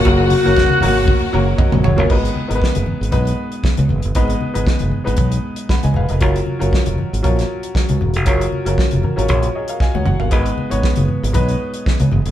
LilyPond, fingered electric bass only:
\new Staff \with { instrumentName = "Fingered electric bass" } { \clef bass \time 4/4 \key gis \dorian \tempo 4 = 117 fis,,8. fis,,8 r16 gis,,8. r16 fis,,8 r16 ais,,16 fis,,16 g,,16 | gis,,8 r16 gis,,16 r16 fis,,16 r16 gis,,16 b,,8 r8. cis,16 fis,,16 g,,16 | gis,,8 r16 gis,,16 r16 fis,,16 r16 gis,,16 b,,8 r8. cis,16 e,,16 eis,,16 | fis,,8 r16 fis,,16 r16 eis,,16 r16 gis,,16 ais,,8 r8. cis,16 e,,16 eis,,16 |
fis,,8 r16 fis,,16 r16 eis,,16 r16 gis,,16 ais,,8 r8. cis,16 fis,,16 g,,16 | gis,,8 r16 gis,,16 r16 fis,,16 r16 gis,,16 b,,8 r8. cis,16 fis,,16 g,,16 | }